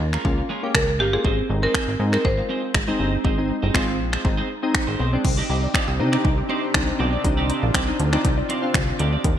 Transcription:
Already playing: marimba A#4
0.00 analog synth bass D#2, muted clean electric guitar stroke
0.13 clean electric guitar G#3 C#4 F4 A#4, finger snap
0.25 analog synth bass C#2, synth keys A#3 C#4 F4, muted clean electric guitar stroke, kick
0.38 muted clean electric guitar stroke
0.49 clean electric guitar G#3 C#4 F4 A#4
0.63 synth keys A#3 C#4 G4, muted clean electric guitar stroke
0.75 analog synth bass C#2, marimba A#4, finger snap, kick
0.88 muted clean electric guitar stroke
0.99 analog synth bass G1, clean electric guitar G#3 C#4 F4 A#4, marimba G4
1.13 synth keys A#3 C#4 F4, marimba G#4, muted clean electric guitar stroke
1.24 analog synth bass G#1, clean electric guitar C4 D#4 G#4 C5, kick
1.38 muted clean electric guitar stroke
1.49 analog synth bass G#1, synth keys G#3 C4 D#4, muted clean electric guitar stroke
1.62 clean electric guitar C4 D#4 G#4 C5, marimba A#4
1.74 clean electric guitar C4 D#4 G#4 C5, finger snap, kick
1.88 analog synth bass G#1, muted clean electric guitar stroke
1.99 analog synth bass G#2, synth keys G#3 C4 D#4, muted clean electric guitar stroke
2.12 clean electric guitar C4 D#4 G#4 C5, marimba A#4, finger snap
2.24 analog synth bass G#1, marimba C5, muted clean electric guitar stroke, kick
2.37 synth keys G#3 C4 F4, muted clean electric guitar stroke
2.49 clean electric guitar C4 D#4 G#4 C5
2.63 muted clean electric guitar stroke
2.74 analog synth bass G#1, finger snap, muted clean electric guitar stroke, kick
2.87 synth keys G#3 C4 D#4, clean electric guitar C4 D#4 G#4 C5
2.99 analog synth bass G1, clean electric guitar C4 D#4 G#4 C5
3.12 muted clean electric guitar stroke
3.24 analog synth bass G#1, clean electric guitar C4 D#4 G#4 C5, kick
3.37 synth keys G#3 C4 D#4, muted clean electric guitar stroke
3.49 muted clean electric guitar stroke
3.62 analog synth bass G1, clean electric guitar C4 D#4 G#4 C5
3.74 analog synth bass G#1, synth keys G#3 C4 F4, clean electric guitar C4 D#4 G#4 C5, finger snap, kick
3.88 muted clean electric guitar stroke
3.99 analog synth bass A#1, muted clean electric guitar stroke
4.12 clean electric guitar C4 D#4 G#4 C5, finger snap
4.24 analog synth bass G#1, synth keys G#3 C4 D#4, muted clean electric guitar stroke, kick
4.37 clean electric guitar C4 D#4 G#4 C5
4.49 muted clean electric guitar stroke
4.62 synth keys G#3 C4 D#4, muted clean electric guitar stroke
4.74 finger snap, muted clean electric guitar stroke, kick
4.87 analog synth bass G#1, clean electric guitar C4 D#4 G#4 C5
4.99 analog synth bass B1, clean electric guitar C4 D#4 G#4 C5
5.13 synth keys G#3 C4 D4, muted clean electric guitar stroke
5.24 analog synth bass C2, supersaw synth C3 C4 D4 G4, synth arpeggio sound D3, muted clean electric guitar stroke, kick, crash
5.37 clean electric guitar C4 D#4 G4 D5
5.49 analog synth bass C2, clean electric guitar C4 D#4 G4 D5, synth arpeggio sound D#4
5.62 synth keys D4 D#4, synth arpeggio sound D5, muted clean electric guitar stroke
5.74 clean electric guitar C4 D#4 G4 D5, synth keys C4 D4 F4, finger snap, kick
5.87 analog synth bass C2, synth arpeggio sound D#6, muted clean electric guitar stroke
5.99 analog synth bass C3, synth arpeggio sound D3, synth keys C4 D4 D#4, muted clean electric guitar stroke
6.12 synth arpeggio sound C4, clean electric guitar C4 D#4 G4 D5, finger snap
6.25 analog synth bass C2, synth arpeggio sound D#4, kick
6.37 synth arpeggio sound D5, muted clean electric guitar stroke
6.49 clean electric guitar C4 D#4 G4 D5, synth keys C4 D4 D#4, synth arpeggio sound C6
6.63 muted clean electric guitar stroke
6.74 analog synth bass C2, synth arpeggio sound D3, synth keys C4 D4 D#4, finger snap, muted clean electric guitar stroke, kick
6.87 synth arpeggio sound C4, muted clean electric guitar stroke
6.99 analog synth bass B1, clean electric guitar C4 D#4 G4 D5
7.12 clean electric guitar C4 D#4 G4 D5, synth arpeggio sound D5
7.24 analog synth bass C2, synth arpeggio sound D3, synth keys C4 D4 D#4, supersaw synth F4, muted clean electric guitar stroke, kick, closed hi-hat
7.37 clean electric guitar C4 D#4 G4 D5
7.49 clean electric guitar C4 D#4 G4 D5, synth arpeggio sound D#4, closed hi-hat
7.63 analog synth bass A#1, synth arpeggio sound D5, muted clean electric guitar stroke
7.74 analog synth bass C2, clean electric guitar C4 D#4 G4 D5, finger snap, kick, closed hi-hat
7.88 synth keys C4 D4 D#4, synth arpeggio sound D#6, muted clean electric guitar stroke
7.99 analog synth bass D2, synth arpeggio sound D3, muted clean electric guitar stroke, closed hi-hat
8.12 synth arpeggio sound C4, synth keys C4 D4 D#4, clean electric guitar C4 D#4 G4 D5, finger snap
8.24 analog synth bass C2, synth arpeggio sound D#4, kick, closed hi-hat
8.37 synth arpeggio sound D5, muted clean electric guitar stroke
8.49 clean electric guitar C4 D#4 G4 D5, synth arpeggio sound C6, closed hi-hat
8.62 synth keys C4 D4 F4, muted clean electric guitar stroke
8.74 analog synth bass C2, synth arpeggio sound D3, finger snap, kick, closed hi-hat
8.87 synth arpeggio sound C4, muted clean electric guitar stroke
8.99 analog synth bass D2, clean electric guitar C4 D#4 G4 D5, closed hi-hat
9.12 clean electric guitar C4 D#4 G4 D5, synth arpeggio sound D5
9.24 analog synth bass D#2, synth arpeggio sound D#3, supersaw synth D#3 F4 G4 A#4, muted clean electric guitar stroke, kick, closed hi-hat

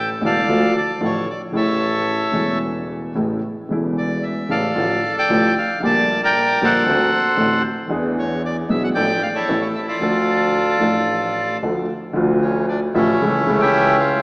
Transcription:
Already playing: double bass A1, grand piano A1 A2 D3 E3 A3 E4, bandoneon A4
0.21 double bass E1, grand piano E1 E2 D3 E3 A3 E4
0.25 bandoneon A4 D5 F5
0.47 double bass D2, grand piano D2 D3 F3 A3 F4
0.77 bandoneon D5
1.00 double bass A1, grand piano A1 A2 D3 F3 A3 F4
1.05 bandoneon C#5
1.30 bandoneon D5
1.52 double bass A1, grand piano A1 A2 C#3 E3 A3 E4
1.56 bandoneon A4 C#5 E5
2.32 grand piano E1 E2 C#3 E3 A3 E4, double bass E1
3.14 grand piano A1 A2 C#3 E3 A3 E4, double bass A1
3.68 double bass E1, grand piano E1 E2 C#3 E3 A3 E4
3.98 bandoneon D5
4.23 bandoneon E5
4.49 double bass A1, grand piano A1 A2 C#3 E3 A3 E4, bandoneon A4 D5 F5
4.75 grand piano A1 A2 D3 F3 A3 F4, double bass A1
5.17 bandoneon D5 G5
5.29 double bass A1, grand piano A1 A2 D3 F3 A3 F4
5.58 bandoneon F5
5.80 double bass A#1, grand piano A#1 A#2 D3 G3 A#3
5.84 grand piano G4, bandoneon D5 A5
6.23 bandoneon A#4 D5 G5
6.60 double bass A#1, grand piano A#1 A#2 D3 G3 A#3 G4, bandoneon A4
6.64 bandoneon C5 F#5
6.86 double bass D2, grand piano D2 D3 A3 C4 F#4
7.37 double bass A1, grand piano A1 A2 D3 A3 C4 F#4
7.87 double bass E2, grand piano E2 E3 B3 D4 G#4
8.19 bandoneon C#5
8.45 bandoneon D5
8.69 double bass B1, grand piano B1 B2 E3 B3 D4 G#4, bandoneon E5
8.84 bandoneon F#5
8.94 double bass A1, grand piano A1 A2 F3 A3 D4 A4, bandoneon D5 G5
9.23 bandoneon F5
9.35 bandoneon E4 A4 C#5
9.47 double bass A1, grand piano A1 A2 E3 A3 C#4 A4
9.62 bandoneon C#5
9.75 bandoneon E5
9.88 bandoneon F4 A4 D5
10.00 double bass D2, grand piano D2 D3 F3 A3 D4 A4
10.78 grand piano A1 A2 F3 A3 D4, double bass A1
10.83 grand piano A4
11.61 double bass D2, grand piano D2 D3 F3 A3 D4 A4
12.13 double bass D2, grand piano D2 D3 F3 A3 F4
12.42 bandoneon C#4
12.68 bandoneon D4
12.94 double bass A1, grand piano A1 A2 D3 F3 A3 F4, bandoneon A3 C#4 E4
13.21 double bass C#2, grand piano C#2 C#3 E3 A3 E4
13.46 double bass C#2, grand piano C#2 C#3 E3 A3
13.50 grand piano E4
13.60 bandoneon C#4 E4 G4
14.00 bandoneon F4

